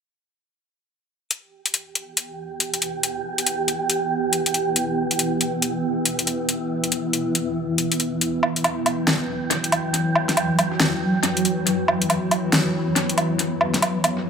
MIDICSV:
0, 0, Header, 1, 4, 480
1, 0, Start_track
1, 0, Key_signature, 1, "minor"
1, 0, Tempo, 431655
1, 1452, Time_signature, 4, 2, 24, 8
1, 15900, End_track
2, 0, Start_track
2, 0, Title_t, "Synth texture"
2, 0, Program_c, 0, 99
2, 1456, Note_on_c, 0, 67, 83
2, 5291, Note_on_c, 0, 64, 82
2, 5324, Note_off_c, 0, 67, 0
2, 9133, Note_on_c, 0, 79, 81
2, 9161, Note_off_c, 0, 64, 0
2, 12975, Note_on_c, 0, 59, 87
2, 13002, Note_off_c, 0, 79, 0
2, 15883, Note_off_c, 0, 59, 0
2, 15900, End_track
3, 0, Start_track
3, 0, Title_t, "Ambient pad"
3, 0, Program_c, 1, 92
3, 1453, Note_on_c, 1, 52, 75
3, 1453, Note_on_c, 1, 59, 77
3, 9132, Note_on_c, 1, 54, 75
3, 9162, Note_off_c, 1, 59, 0
3, 15900, Note_off_c, 1, 52, 0
3, 15900, Note_off_c, 1, 54, 0
3, 15900, End_track
4, 0, Start_track
4, 0, Title_t, "Drums"
4, 1453, Note_on_c, 9, 42, 74
4, 1564, Note_off_c, 9, 42, 0
4, 1841, Note_on_c, 9, 42, 48
4, 1933, Note_off_c, 9, 42, 0
4, 1933, Note_on_c, 9, 42, 72
4, 2044, Note_off_c, 9, 42, 0
4, 2173, Note_on_c, 9, 42, 51
4, 2284, Note_off_c, 9, 42, 0
4, 2413, Note_on_c, 9, 42, 80
4, 2524, Note_off_c, 9, 42, 0
4, 2893, Note_on_c, 9, 42, 81
4, 3004, Note_off_c, 9, 42, 0
4, 3042, Note_on_c, 9, 42, 53
4, 3134, Note_off_c, 9, 42, 0
4, 3134, Note_on_c, 9, 42, 53
4, 3245, Note_off_c, 9, 42, 0
4, 3373, Note_on_c, 9, 42, 78
4, 3484, Note_off_c, 9, 42, 0
4, 3762, Note_on_c, 9, 42, 50
4, 3853, Note_off_c, 9, 42, 0
4, 3853, Note_on_c, 9, 42, 77
4, 3964, Note_off_c, 9, 42, 0
4, 4093, Note_on_c, 9, 42, 54
4, 4204, Note_off_c, 9, 42, 0
4, 4332, Note_on_c, 9, 42, 80
4, 4443, Note_off_c, 9, 42, 0
4, 4812, Note_on_c, 9, 42, 78
4, 4923, Note_off_c, 9, 42, 0
4, 4961, Note_on_c, 9, 42, 54
4, 5052, Note_off_c, 9, 42, 0
4, 5052, Note_on_c, 9, 42, 53
4, 5163, Note_off_c, 9, 42, 0
4, 5292, Note_on_c, 9, 42, 75
4, 5404, Note_off_c, 9, 42, 0
4, 5682, Note_on_c, 9, 42, 50
4, 5772, Note_off_c, 9, 42, 0
4, 5772, Note_on_c, 9, 42, 72
4, 5883, Note_off_c, 9, 42, 0
4, 6013, Note_on_c, 9, 42, 53
4, 6124, Note_off_c, 9, 42, 0
4, 6253, Note_on_c, 9, 42, 78
4, 6364, Note_off_c, 9, 42, 0
4, 6733, Note_on_c, 9, 42, 77
4, 6844, Note_off_c, 9, 42, 0
4, 6882, Note_on_c, 9, 42, 52
4, 6973, Note_off_c, 9, 42, 0
4, 6973, Note_on_c, 9, 42, 51
4, 7084, Note_off_c, 9, 42, 0
4, 7213, Note_on_c, 9, 42, 73
4, 7324, Note_off_c, 9, 42, 0
4, 7602, Note_on_c, 9, 42, 45
4, 7693, Note_off_c, 9, 42, 0
4, 7693, Note_on_c, 9, 42, 73
4, 7804, Note_off_c, 9, 42, 0
4, 7933, Note_on_c, 9, 42, 52
4, 8044, Note_off_c, 9, 42, 0
4, 8173, Note_on_c, 9, 42, 73
4, 8285, Note_off_c, 9, 42, 0
4, 8653, Note_on_c, 9, 42, 71
4, 8764, Note_off_c, 9, 42, 0
4, 8802, Note_on_c, 9, 42, 47
4, 8893, Note_off_c, 9, 42, 0
4, 8893, Note_on_c, 9, 42, 50
4, 9005, Note_off_c, 9, 42, 0
4, 9133, Note_on_c, 9, 42, 73
4, 9244, Note_off_c, 9, 42, 0
4, 9373, Note_on_c, 9, 77, 52
4, 9484, Note_off_c, 9, 77, 0
4, 9521, Note_on_c, 9, 42, 43
4, 9612, Note_off_c, 9, 42, 0
4, 9612, Note_on_c, 9, 42, 68
4, 9612, Note_on_c, 9, 77, 75
4, 9723, Note_off_c, 9, 42, 0
4, 9723, Note_off_c, 9, 77, 0
4, 9852, Note_on_c, 9, 42, 50
4, 9852, Note_on_c, 9, 77, 53
4, 9963, Note_off_c, 9, 42, 0
4, 9963, Note_off_c, 9, 77, 0
4, 10092, Note_on_c, 9, 38, 109
4, 10092, Note_on_c, 9, 42, 74
4, 10203, Note_off_c, 9, 38, 0
4, 10203, Note_off_c, 9, 42, 0
4, 10572, Note_on_c, 9, 42, 69
4, 10683, Note_off_c, 9, 42, 0
4, 10720, Note_on_c, 9, 42, 49
4, 10812, Note_off_c, 9, 42, 0
4, 10812, Note_on_c, 9, 42, 49
4, 10812, Note_on_c, 9, 77, 60
4, 10924, Note_off_c, 9, 42, 0
4, 10924, Note_off_c, 9, 77, 0
4, 11052, Note_on_c, 9, 42, 72
4, 11163, Note_off_c, 9, 42, 0
4, 11292, Note_on_c, 9, 77, 54
4, 11403, Note_off_c, 9, 77, 0
4, 11441, Note_on_c, 9, 38, 30
4, 11441, Note_on_c, 9, 42, 45
4, 11532, Note_off_c, 9, 42, 0
4, 11532, Note_on_c, 9, 42, 72
4, 11532, Note_on_c, 9, 77, 74
4, 11553, Note_off_c, 9, 38, 0
4, 11643, Note_off_c, 9, 42, 0
4, 11643, Note_off_c, 9, 77, 0
4, 11772, Note_on_c, 9, 42, 48
4, 11772, Note_on_c, 9, 77, 58
4, 11883, Note_off_c, 9, 42, 0
4, 11883, Note_off_c, 9, 77, 0
4, 12012, Note_on_c, 9, 38, 112
4, 12012, Note_on_c, 9, 42, 74
4, 12123, Note_off_c, 9, 38, 0
4, 12123, Note_off_c, 9, 42, 0
4, 12492, Note_on_c, 9, 42, 73
4, 12603, Note_off_c, 9, 42, 0
4, 12641, Note_on_c, 9, 42, 46
4, 12733, Note_off_c, 9, 42, 0
4, 12733, Note_on_c, 9, 42, 52
4, 12844, Note_off_c, 9, 42, 0
4, 12973, Note_on_c, 9, 42, 74
4, 13084, Note_off_c, 9, 42, 0
4, 13213, Note_on_c, 9, 77, 52
4, 13324, Note_off_c, 9, 77, 0
4, 13362, Note_on_c, 9, 42, 47
4, 13453, Note_off_c, 9, 42, 0
4, 13453, Note_on_c, 9, 42, 69
4, 13453, Note_on_c, 9, 77, 74
4, 13564, Note_off_c, 9, 42, 0
4, 13564, Note_off_c, 9, 77, 0
4, 13693, Note_on_c, 9, 42, 52
4, 13693, Note_on_c, 9, 77, 54
4, 13804, Note_off_c, 9, 42, 0
4, 13804, Note_off_c, 9, 77, 0
4, 13932, Note_on_c, 9, 38, 117
4, 13932, Note_on_c, 9, 42, 78
4, 14044, Note_off_c, 9, 38, 0
4, 14044, Note_off_c, 9, 42, 0
4, 14413, Note_on_c, 9, 42, 75
4, 14524, Note_off_c, 9, 42, 0
4, 14562, Note_on_c, 9, 42, 48
4, 14652, Note_off_c, 9, 42, 0
4, 14652, Note_on_c, 9, 42, 53
4, 14652, Note_on_c, 9, 77, 59
4, 14763, Note_off_c, 9, 42, 0
4, 14763, Note_off_c, 9, 77, 0
4, 14892, Note_on_c, 9, 42, 72
4, 15003, Note_off_c, 9, 42, 0
4, 15132, Note_on_c, 9, 77, 50
4, 15244, Note_off_c, 9, 77, 0
4, 15281, Note_on_c, 9, 38, 32
4, 15281, Note_on_c, 9, 42, 48
4, 15373, Note_off_c, 9, 42, 0
4, 15373, Note_on_c, 9, 42, 73
4, 15373, Note_on_c, 9, 77, 74
4, 15393, Note_off_c, 9, 38, 0
4, 15484, Note_off_c, 9, 42, 0
4, 15484, Note_off_c, 9, 77, 0
4, 15613, Note_on_c, 9, 42, 53
4, 15613, Note_on_c, 9, 77, 51
4, 15724, Note_off_c, 9, 42, 0
4, 15724, Note_off_c, 9, 77, 0
4, 15900, End_track
0, 0, End_of_file